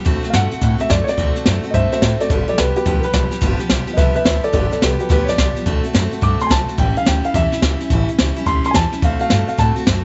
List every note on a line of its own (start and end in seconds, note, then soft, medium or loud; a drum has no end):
0.05 0.20 D2 medium
0.05 0.24 D3 loud
0.05 0.24 A3 medium
0.05 0.23 C4 medium
0.05 0.22 F#4 loud
0.05 kick loud
0.05 closed hi-hat medium
0.23 0.33 A3 medium
0.23 0.34 C4 medium
0.23 0.34 F#4 medium
0.23 muted upright bass stroke medium
0.23 snare soft
0.23 closed hi-hat medium
0.30 0.48 G2 medium
0.30 0.52 D3 medium
0.30 0.33 F5 medium
0.30 snare loud
0.30 closed hi-hat loud
0.34 0.52 A3 medium
0.34 0.52 C4 medium
0.34 0.50 F#4 medium
0.34 0.79 F#5 loud
0.51 0.60 A3 soft
0.51 0.61 C4 medium
0.51 0.62 F#4 medium
0.51 muted upright bass stroke medium
0.51 closed hi-hat medium
0.61 0.76 A2 medium
0.61 0.80 D3 medium
0.61 0.80 A3 medium
0.61 0.79 C4 medium
0.61 0.77 F#4 medium
0.61 kick loud
0.61 snare soft
0.61 closed hi-hat medium
0.78 0.89 A3 soft
0.78 0.89 C4 soft
0.78 0.89 F#4 medium
0.78 0.90 E5 medium
0.78 muted upright bass stroke medium
0.78 snare soft
0.78 closed hi-hat medium
0.89 1.04 F#2 medium
0.89 1.08 D3 medium
0.89 1.08 A3 medium
0.89 1.08 C4 medium
0.89 1.06 F#4 medium
0.89 1.08 D5 medium
0.89 kick medium
0.89 snare loud
0.89 closed hi-hat medium
1.04 1.18 F#4 medium
1.04 1.06 C#5 medium
1.08 1.17 A3 soft
1.08 1.18 C4 soft
1.08 1.63 D5 loud
1.08 muted upright bass stroke medium
1.08 snare soft
1.08 closed hi-hat medium
1.17 1.32 D2 loud
1.17 1.36 D3 medium
1.17 1.36 A3 medium
1.17 1.36 C4 medium
1.17 1.34 F#4 medium
1.17 kick loud
1.17 closed hi-hat medium
1.35 1.46 A3 soft
1.35 1.47 C4 soft
1.35 1.46 F#4 soft
1.35 muted upright bass stroke medium
1.35 snare soft
1.35 closed hi-hat medium
1.46 1.61 F#2 medium
1.46 1.64 D3 medium
1.46 1.65 A3 medium
1.46 1.64 C4 medium
1.46 1.62 F#4 medium
1.46 snare loud
1.46 closed hi-hat medium
1.63 1.74 A3 soft
1.63 1.74 C4 medium
1.63 1.74 F#4 medium
1.63 muted upright bass stroke medium
1.63 closed hi-hat medium
1.70 1.88 G2 medium
1.70 1.92 D3 medium
1.70 1.91 C5 medium
1.70 1.73 D#5 medium
1.70 1.91 E5 loud
1.70 kick loud
1.70 closed hi-hat medium
1.75 1.93 A3 medium
1.75 1.93 C4 medium
1.75 1.91 F#4 medium
1.92 2.02 A3 soft
1.92 2.03 C4 soft
1.92 2.02 F#4 medium
1.92 2.01 C5 medium
1.92 2.02 E5 medium
1.92 muted upright bass stroke medium
1.92 snare soft
1.92 closed hi-hat medium
2.02 2.16 A2 medium
2.02 2.21 D3 medium
2.02 2.21 A3 medium
2.02 2.21 C4 medium
2.02 2.19 F#4 medium
2.02 kick medium
2.02 snare loud
2.02 closed hi-hat medium
2.20 2.31 A3 soft
2.20 2.31 C4 soft
2.20 2.30 F#4 soft
2.20 2.29 A4 medium
2.20 2.29 D5 medium
2.20 muted upright bass stroke medium
2.20 snare soft
2.20 closed hi-hat medium
2.30 2.44 G1 medium
2.30 2.48 G2 medium
2.30 2.49 D3 medium
2.30 2.49 F3 medium
2.30 2.49 G3 medium
2.30 2.47 B3 medium
2.30 2.46 G4 medium
2.30 2.47 A4 medium
2.30 kick loud
2.30 closed hi-hat medium
2.48 2.56 F3 soft
2.48 2.58 G3 soft
2.48 2.59 B3 medium
2.48 2.58 G4 medium
2.48 2.58 A4 medium
2.48 2.59 D5 medium
2.48 muted upright bass stroke medium
2.48 closed hi-hat medium
2.58 2.73 C2 medium
2.58 2.76 F3 medium
2.58 2.77 G3 medium
2.58 2.76 B3 medium
2.58 2.75 G4 medium
2.58 2.76 B4 medium
2.58 snare loud
2.58 closed hi-hat medium
2.76 2.85 F3 soft
2.76 2.86 G3 soft
2.76 2.86 B3 soft
2.76 2.86 G4 medium
2.76 2.85 G4 medium
2.76 2.86 B4 medium
2.76 muted upright bass stroke medium
2.76 closed hi-hat medium
2.85 3.00 D2 medium
2.85 3.04 G2 medium
2.85 3.04 D3 medium
2.85 3.04 F3 medium
2.85 3.04 G3 medium
2.85 3.03 B3 medium
2.85 3.03 G4 medium
2.85 3.02 G4 medium
2.85 3.03 B4 medium
2.85 kick loud
2.85 closed hi-hat loud
3.00 3.14 G4 medium
3.00 3.02 A#4 medium
3.00 closed hi-hat medium
3.04 3.12 F3 soft
3.04 3.13 G3 medium
3.04 3.14 B3 medium
3.04 3.59 B4 loud
3.04 muted upright bass stroke medium
3.13 3.28 B1 loud
3.13 3.32 F3 medium
3.13 3.32 G3 medium
3.13 3.31 B3 medium
3.13 3.30 G4 medium
3.13 kick medium
3.13 snare loud
3.13 closed hi-hat medium
3.31 3.41 F3 soft
3.31 3.41 G3 soft
3.31 3.41 B3 soft
3.31 3.42 G4 medium
3.31 muted upright bass stroke medium
3.31 snare soft
3.31 closed hi-hat medium
3.41 3.56 G1 loud
3.41 3.60 G2 loud
3.41 3.60 D3 medium
3.41 3.60 F3 medium
3.41 3.60 G3 loud
3.41 3.59 B3 loud
3.41 3.58 G4 loud
3.41 kick loud
3.41 closed hi-hat loud
3.59 3.68 F3 medium
3.59 3.69 G3 medium
3.59 3.70 B3 medium
3.59 3.70 G4 medium
3.59 muted upright bass stroke medium
3.59 snare soft
3.59 closed hi-hat medium
3.69 3.84 B1 medium
3.69 3.88 F3 medium
3.69 3.88 G3 medium
3.69 3.87 B3 medium
3.69 3.86 G4 medium
3.69 snare loud
3.69 closed hi-hat loud
3.87 3.96 F3 soft
3.87 3.97 G3 medium
3.87 3.97 B3 medium
3.87 3.98 G4 medium
3.87 muted upright bass stroke medium
3.87 closed hi-hat medium
3.93 4.16 G2 medium
3.93 4.14 B4 medium
3.93 3.96 D#5 medium
3.97 4.12 C2 medium
3.97 4.16 D3 medium
3.97 4.16 F3 medium
3.97 4.15 G3 medium
3.97 4.14 B3 medium
3.97 4.13 G4 loud
3.97 4.15 E5 medium
3.97 kick loud
3.97 snare soft
3.97 closed hi-hat medium
4.14 4.23 F3 medium
4.14 4.24 G3 soft
4.14 4.25 B3 medium
4.14 4.25 G4 medium
4.14 4.23 B4 medium
4.14 4.24 E5 medium
4.14 muted upright bass stroke medium
4.14 closed hi-hat medium
4.24 4.40 D2 medium
4.24 4.43 F3 medium
4.24 4.44 G3 medium
4.24 4.43 B3 medium
4.24 4.42 G4 medium
4.24 4.42 B4 medium
4.24 4.44 E5 medium
4.24 kick medium
4.24 snare loud
4.24 closed hi-hat medium
4.43 4.52 F3 soft
4.43 4.53 G3 soft
4.43 4.53 B3 soft
4.43 4.53 G4 soft
4.43 4.52 A4 medium
4.43 4.53 D5 loud
4.43 muted upright bass stroke medium
4.43 closed hi-hat medium
4.52 4.68 G1 loud
4.52 4.71 G2 medium
4.52 4.72 D3 medium
4.52 4.72 F3 medium
4.52 4.72 G3 medium
4.52 4.71 B3 medium
4.52 4.70 G4 medium
4.52 4.70 A4 medium
4.52 4.71 D5 medium
4.52 kick loud
4.52 closed hi-hat medium
4.71 4.80 F3 soft
4.71 4.81 G3 soft
4.71 4.82 B3 medium
4.71 4.82 G4 medium
4.71 4.81 A4 medium
4.71 4.82 D5 medium
4.71 muted upright bass stroke medium
4.71 snare soft
4.71 closed hi-hat medium
4.81 4.97 C2 medium
4.81 5.00 F3 medium
4.81 5.00 G3 medium
4.81 4.99 B3 medium
4.81 4.99 G4 medium
4.81 4.98 G4 medium
4.81 5.00 B4 medium
4.81 snare loud
4.81 closed hi-hat medium
4.99 5.08 F3 soft
4.99 5.09 G3 soft
4.99 5.09 B3 soft
4.99 5.10 G4 medium
4.99 5.11 B4 medium
4.99 muted upright bass stroke medium
4.99 closed hi-hat medium
5.09 5.24 D2 medium
5.09 5.28 G2 medium
5.09 5.28 D3 medium
5.09 5.28 F3 medium
5.09 5.28 G3 medium
5.09 5.27 B3 medium
5.09 5.26 G4 medium
5.09 5.28 G4 medium
5.09 5.29 B4 medium
5.09 kick loud
5.09 snare soft
5.09 closed hi-hat medium
5.24 5.38 B3 soft
5.24 5.38 G4 medium
5.24 5.26 C#5 medium
5.28 5.36 F3 soft
5.28 5.37 G3 medium
5.28 5.83 D5 loud
5.28 muted upright bass stroke medium
5.28 snare soft
5.28 closed hi-hat medium
5.37 5.53 B1 medium
5.37 5.56 F3 medium
5.37 5.56 G3 medium
5.37 5.55 B3 medium
5.37 5.54 G4 medium
5.37 kick medium
5.37 snare loud
5.37 closed hi-hat medium
5.55 5.65 F3 soft
5.55 5.66 G3 medium
5.55 5.66 B3 soft
5.55 5.66 G4 soft
5.55 muted upright bass stroke medium
5.55 closed hi-hat medium
5.66 5.80 D2 loud
5.66 5.84 D3 medium
5.66 5.85 A3 medium
5.66 5.84 C4 medium
5.66 5.82 F#4 loud
5.66 kick loud
5.66 closed hi-hat medium
5.83 5.94 A3 medium
5.83 5.95 C4 soft
5.83 5.94 F#4 medium
5.83 muted upright bass stroke medium
5.83 closed hi-hat medium
5.93 6.09 F#2 medium
5.93 6.12 D3 medium
5.93 6.13 A3 medium
5.93 6.12 C4 medium
5.93 6.10 F#4 medium
5.93 snare loud
5.93 closed hi-hat loud
6.11 6.21 A3 medium
6.11 6.22 C4 medium
6.11 6.22 F#4 medium
6.11 muted upright bass stroke medium
6.11 closed hi-hat medium
6.21 6.37 G2 medium
6.21 6.40 D3 medium
6.21 6.40 A3 medium
6.21 6.40 C4 medium
6.21 6.38 F#4 medium
6.21 6.40 D6 medium
6.21 kick loud
6.21 closed hi-hat loud
6.40 6.49 A3 soft
6.40 6.50 C4 soft
6.40 6.50 F#4 medium
6.40 6.51 C6 medium
6.40 muted upright bass stroke medium
6.40 snare soft
6.40 closed hi-hat medium
6.47 6.65 B1 medium
6.47 6.68 D3 medium
6.47 6.69 A3 medium
6.47 6.49 G#5 medium
6.47 kick medium
6.47 snare loud
6.47 closed hi-hat medium
6.51 6.67 F#4 medium
6.51 6.78 A5 medium
6.68 6.78 A3 soft
6.68 6.79 C4 soft
6.68 6.79 F#4 soft
6.68 muted upright bass stroke medium
6.68 snare soft
6.68 closed hi-hat medium
6.78 6.92 A1 loud
6.78 6.96 A2 medium
6.78 6.97 E3 medium
6.78 6.97 G3 medium
6.78 6.96 C#4 medium
6.78 6.95 E4 medium
6.78 6.97 G5 medium
6.78 kick loud
6.78 closed hi-hat medium
6.96 7.05 G3 soft
6.96 7.06 C#4 soft
6.96 7.06 E4 soft
6.96 7.07 F5 medium
6.96 muted upright bass stroke medium
6.96 closed hi-hat medium
7.05 7.21 D2 medium
7.05 7.24 E3 medium
7.05 7.25 G3 medium
7.05 7.24 C#4 medium
7.05 7.23 E4 medium
7.05 7.24 G5 medium
7.05 snare loud
7.05 closed hi-hat medium
7.24 7.34 G3 soft
7.24 7.35 C#4 soft
7.24 7.34 E4 medium
7.24 7.35 F5 medium
7.24 muted upright bass stroke medium
7.24 closed hi-hat medium
7.34 7.49 E2 medium
7.34 7.52 A2 medium
7.34 7.53 E3 medium
7.34 7.53 G3 medium
7.34 7.53 C#4 medium
7.34 7.51 E4 medium
7.34 7.89 E5 loud
7.34 kick loud
7.34 snare soft
7.34 closed hi-hat medium
7.52 7.62 G3 soft
7.52 7.63 C#4 medium
7.52 7.63 E4 medium
7.52 muted upright bass stroke medium
7.52 snare soft
7.52 closed hi-hat medium
7.62 7.77 C#2 medium
7.62 7.80 E3 medium
7.62 7.81 G3 medium
7.62 7.81 C#4 medium
7.62 7.79 E4 medium
7.62 kick medium
7.62 snare loud
7.62 closed hi-hat medium
7.80 7.91 G3 medium
7.80 7.91 C#4 soft
7.80 7.91 E4 medium
7.80 muted upright bass stroke medium
7.80 snare soft
7.80 closed hi-hat medium
7.90 8.05 A1 loud
7.90 8.09 A2 medium
7.90 8.09 E3 medium
7.90 8.09 G3 medium
7.90 8.08 C#4 loud
7.90 8.07 E4 loud
7.90 kick loud
7.90 closed hi-hat medium
8.08 8.19 C#4 medium
8.08 8.18 E4 medium
8.08 muted upright bass stroke medium
8.08 closed hi-hat medium
8.19 8.33 C#2 medium
8.19 8.37 E3 medium
8.19 8.37 G3 medium
8.19 8.37 C#4 medium
8.19 8.35 E4 medium
8.19 snare loud
8.19 closed hi-hat medium
8.36 8.46 G3 medium
8.36 8.47 C#4 medium
8.36 8.47 E4 medium
8.36 muted upright bass stroke medium
8.36 closed hi-hat medium
8.46 8.61 D2 medium
8.46 8.65 A2 medium
8.46 8.65 E3 medium
8.46 8.65 G3 medium
8.46 8.64 C#4 medium
8.46 8.63 E4 medium
8.46 8.64 C6 loud
8.46 kick loud
8.46 closed hi-hat loud
8.64 8.73 G3 soft
8.64 8.74 C#4 soft
8.64 8.74 E4 medium
8.64 8.75 C6 medium
8.64 muted upright bass stroke medium
8.64 snare soft
8.64 closed hi-hat medium
8.71 8.89 E2 medium
8.71 8.92 E3 medium
8.71 8.93 G3 medium
8.71 8.92 C#4 medium
8.71 8.74 G#5 medium
8.71 kick medium
8.71 snare loud
8.71 closed hi-hat loud
8.75 8.91 E4 medium
8.75 9.02 A5 medium
8.92 9.03 G3 soft
8.92 9.03 C#4 soft
8.92 9.02 E4 soft
8.92 muted upright bass stroke medium
8.92 snare soft
8.92 closed hi-hat medium
9.02 9.17 D2 medium
9.02 9.21 D3 medium
9.02 9.21 A3 medium
9.02 9.20 C4 medium
9.02 9.18 F#4 loud
9.02 9.19 F5 medium
9.02 kick loud
9.02 closed hi-hat loud
9.20 9.30 A3 soft
9.20 9.31 C4 medium
9.20 9.30 F#4 medium
9.20 9.30 F5 medium
9.20 muted upright bass stroke medium
9.20 closed hi-hat medium
9.30 9.45 G2 medium
9.30 9.48 D3 medium
9.30 9.49 A3 medium
9.30 9.48 C4 medium
9.30 9.46 F#4 medium
9.30 9.47 F5 medium
9.30 snare loud
9.30 closed hi-hat medium
9.48 9.57 A3 soft
9.48 9.58 C4 medium
9.48 9.58 F#4 medium
9.48 9.58 F5 medium
9.48 muted upright bass stroke medium
9.48 closed hi-hat medium
9.58 9.73 A2 medium
9.58 9.76 D3 medium
9.58 9.77 A3 medium
9.58 9.76 C4 medium
9.58 9.75 F#4 medium
9.58 10.04 A5 medium
9.58 kick loud
9.58 snare soft
9.58 closed hi-hat medium
9.76 9.86 A3 soft
9.76 9.87 C4 medium
9.76 9.86 F#4 medium
9.76 muted upright bass stroke medium
9.76 closed hi-hat medium
9.86 10.01 F#2 loud
9.86 10.04 D3 medium
9.86 10.04 A3 medium
9.86 10.04 C4 medium
9.86 10.03 F#4 medium
9.86 kick medium
9.86 snare loud
9.86 closed hi-hat medium